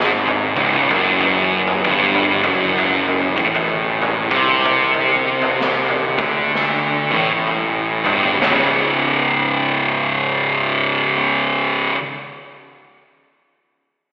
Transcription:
Already playing: G#1 G#2
0.00 snare
0.27 floor tom, mid tom
0.56 C#1 C#2, kick
0.74 mid tom
0.90 F#1 F#2, kick, floor tom
1.21 floor tom
1.67 floor tom
1.84 G1 G2, kick
2.14 floor tom
2.43 F#1 F#2, kick, floor tom
2.78 floor tom, mid tom
3.08 floor tom
3.36 A1 A2, kick
3.55 floor tom
4.02 floor tom, mid tom
4.30 C2 C3, kick
4.48 mid tom
4.66 kick, floor tom
4.94 floor tom
5.42 floor tom
5.61 snare
5.89 floor tom
6.18 D2 D3, kick, floor tom, mid tom
6.55 snare
7.12 A1 A2, high tom
7.30 high tom
7.47 mid tom
8.05 G1 G2, floor tom
8.23 floor tom
8.39 C#1 C#2 G#2, snare
8.43 C#3

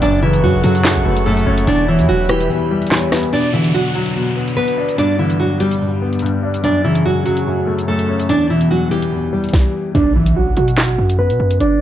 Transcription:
0.02 F#1 F#2 D4 A4 C#5 D5 F#5 C#6, closed hi-hat
0.22 C#3 E3 E4 B4
0.33 closed hi-hat
0.43 F#2 F#3 F#4
0.54 F#1
0.64 F#2 F#3 F#4 A4, closed hi-hat
0.75 closed hi-hat
0.84 F#2, snare, clap
0.96 A1
1.05 F#1 A3 B4
1.17 closed hi-hat
1.26 F#2 A3 A4
1.37 closed hi-hat
1.47 F#1 C#4 C#5
1.58 closed hi-hat
1.67 E1 E2 D4 G4 B4 D5 E5 B5, closed hi-hat
1.88 B2 E3 E4 C#5
1.99 E2, closed hi-hat
2.09 E1 E2 F#3 F#4
2.29 E3 G3 G4 B4, cross-stick, closed hi-hat
2.40 closed hi-hat
2.50 E2
2.71 G3
2.82 closed hi-hat
2.87 closed hi-hat
2.91 E2 C#5, snare, clap, closed hi-hat
2.97 closed hi-hat
3.12 B3 B4, cross-stick, snare
3.23 closed hi-hat
3.33 B2 B3 D4 F#4 D5, closed hi-hat, downlifter
3.53 D3 E3 E4
3.64 closed hi-hat
3.74 B2 F#3 F#4
3.95 F#3 F#4, closed hi-hat
4.06 closed hi-hat
4.16 B2
4.36 B3
4.48 closed hi-hat
4.57 B2 B3 B4
4.68 closed hi-hat
4.78 D4
4.89 closed hi-hat
4.98 G2 G3 B3 D4 D5, closed hi-hat
5.19 D3 E3 E4
5.30 closed hi-hat
5.40 G2 F#3 F#4
5.60 G3 G4, closed hi-hat
5.71 closed hi-hat
5.81 G2
6.02 B3
6.13 closed hi-hat
6.19 G2, closed hi-hat
6.26 closed hi-hat
6.43 D4
6.54 closed hi-hat
6.64 F#2 F#3 A3 C#4 D4 D5, closed hi-hat
6.84 C#3 E3 E4
6.95 closed hi-hat
7.05 F#2 F#3 F#4
7.26 F#3 F#4, closed hi-hat
7.37 closed hi-hat
7.47 F#2
7.67 A3
7.79 closed hi-hat
7.88 F#2 A3 A4
7.99 closed hi-hat
8.09 C#4
8.20 closed hi-hat
8.29 E2 E3 G3 B3 D4 D5, closed hi-hat
8.50 B2 E3 E4
8.61 closed hi-hat
8.71 E2 F#3 F#4
8.91 E3 G3 G4, closed hi-hat
9.02 closed hi-hat
9.12 E2
9.33 G3
9.44 closed hi-hat
9.49 closed hi-hat
9.54 kick, snare, closed hi-hat
9.59 closed hi-hat
9.95 B1 D4 D5, closed hi-hat, impact
10.16 E3 E4
10.26 closed hi-hat
10.36 F#3 F#4
10.57 B2 F#3 F#4, closed hi-hat
10.68 closed hi-hat
10.78 snare, clap
10.98 F#2
11.10 closed hi-hat
11.19 B3 B4
11.30 B2, closed hi-hat
11.40 F#2
11.51 closed hi-hat
11.60 G1 D4 D5, closed hi-hat

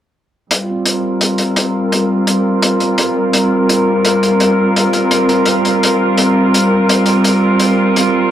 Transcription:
0.50 G3, closed hi-hat
0.60 F4
0.68 C4
0.86 A#4, closed hi-hat
1.21 closed hi-hat
1.38 closed hi-hat
1.56 closed hi-hat
1.92 closed hi-hat
2.27 closed hi-hat
2.62 closed hi-hat
2.80 closed hi-hat
2.98 closed hi-hat
3.33 closed hi-hat
3.69 closed hi-hat
4.05 closed hi-hat
4.23 closed hi-hat
4.40 closed hi-hat
4.76 closed hi-hat
4.93 closed hi-hat
5.11 closed hi-hat
5.29 closed hi-hat
5.45 closed hi-hat
5.65 closed hi-hat
5.83 closed hi-hat
6.18 closed hi-hat
6.54 closed hi-hat
6.89 closed hi-hat
7.06 closed hi-hat
7.24 closed hi-hat
7.60 closed hi-hat
7.96 closed hi-hat

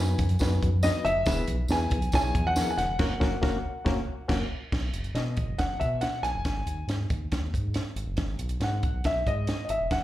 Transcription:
Already playing: F#2 B3 D#4 F#4 B4 G#5
0.18 F#2, kick, closed hi-hat, muted conga, high conga, low conga
0.29 closed hi-hat
0.39 F#2 B3 D#4 F#4 B4, kick, snare, tambourine
0.62 F#2, kick, closed hi-hat, muted conga, high conga
0.83 B3 D#4 F#4 B4 D#5, snare, tambourine, high conga
1.05 F#1 E5, closed hi-hat, muted conga, low conga
1.16 F#1
1.26 E1 E3 B3 E4 G#4 B4, kick, snare, tambourine, low conga
1.47 B1, closed hi-hat, high conga
1.68 E2 B3 E4 G#4 B4 G#5, snare, tambourine, muted conga
1.90 B1, kick, closed hi-hat, muted conga, high conga, low conga
2.02 closed hi-hat
2.12 B1 B3 E4 G#4 C#5 G#5, kick, snare, tambourine
2.34 E2, kick, closed hi-hat, high conga
2.47 F#5
2.56 B3 E4 G#4 A#4, snare, tambourine, muted conga, high conga
2.70 G#5
2.77 E1 F#5, snare, closed hi-hat, low conga
2.88 E1
2.99 F#1 A#3 C#4 F#4 A#4, kick, snare, crash
3.20 F#1 A#3 C#4 F#4 A#4, kick, snare
3.42 F#1 A#3 C#4 F#4 A#4, kick, snare
3.85 F#1 A#3 C#4 F#4 A#4, kick, snare
4.28 F#1 A#3 C#4 F#4, kick, snare, crash
4.72 B1, kick, snare, crash
4.93 F#1, closed hi-hat
5.04 closed hi-hat
5.14 B2 D#5, snare, closed hi-hat
5.37 F#1, kick, closed hi-hat
5.58 F#1 F#5, kick, snare, closed hi-hat
5.80 B2 E5, kick, closed hi-hat
6.01 F#5, snare, closed hi-hat
6.23 B1 G#5, snare, closed hi-hat
6.34 F#1
6.45 G#1, kick, snare, closed hi-hat
6.66 D#2, closed hi-hat
6.87 G#2, snare, closed hi-hat
7.10 D#2, kick, closed hi-hat
7.32 D#2, kick, snare, closed hi-hat
7.54 G#2, kick, closed hi-hat
7.74 snare, closed hi-hat
7.95 G#1, closed hi-hat
8.06 F#1
8.17 G#1, kick, snare, closed hi-hat
8.39 B1, closed hi-hat
8.49 closed hi-hat
8.60 G#2 F#5, snare, closed hi-hat
8.83 B1, kick, closed hi-hat
9.04 B1 E5, kick, snare, closed hi-hat
9.27 G#2 D#5, kick, closed hi-hat
9.47 snare, closed hi-hat
9.65 D#5
9.69 G#1 E5, closed hi-hat
9.80 E1
9.91 F#1 F#5, kick, snare, closed hi-hat

